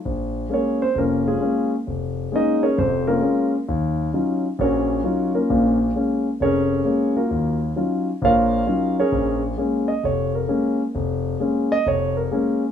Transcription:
X:1
M:4/4
L:1/8
Q:"Swing" 1/4=132
K:Bbm
V:1 name="Grand piano"
z2 [DABd] [Cc] [B,DFB] [A,DFA]2 z | z2 [Ee] [DABd] [Cc] [B,DFB]2 z | z4 [DGBd]3 [B,DFB]- | [B,DFB] z3 [DABd]3 [B,FGB]- |
[B,FGB] z3 [FBdf]3 [DABd]- | [DABd] z2 e d B2 z | z3 e d B2 z |]
V:2 name="Grand piano"
B,,,2 [A,B,D] z F,,,2 [A,B,D] z | F,,,2 [A,B,D] z [F,,,F,,]2 [A,B,D] z | E,,2 [G,DEF] z B,,,2 [G,DEF] z | [B,,,B,,]2 [A,B,D] z F,,,2 [A,B,D] z |
E,,2 [G,DEF] z [B,,,B,,]2 [G,DEF] z | B,,,2 [A,B,D] z F,,,2 [A,B,D] z | F,,,2 [A,B,D] z F,,,2 [A,B,D] z |]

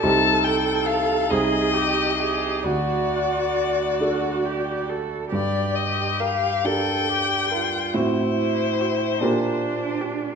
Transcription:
X:1
M:6/8
L:1/16
Q:3/8=46
K:Gm
V:1 name="Violin"
a2 g2 f2 e6 | d8- d2 z2 | d2 e2 f2 g6 | c8- c2 z2 |]
V:2 name="Cello"
A6 _A2 G2 A2 | ^F6 F2 G2 A2 | G6 A2 G2 F2 | =E6 D6 |]
V:3 name="Viola"
A6 _A2 G2 G2 | ^F8- F3 z | z4 B2 z4 B2 | z4 ^F2 z4 G2 |]
V:4 name="Grand piano"
[C,,EGc]6 [C,,E_Ac]6 | D,,6 [D^FA]6 | G,,6 [DGB]6 | [A,,C^Fc]6 [B,,DGB]6 |]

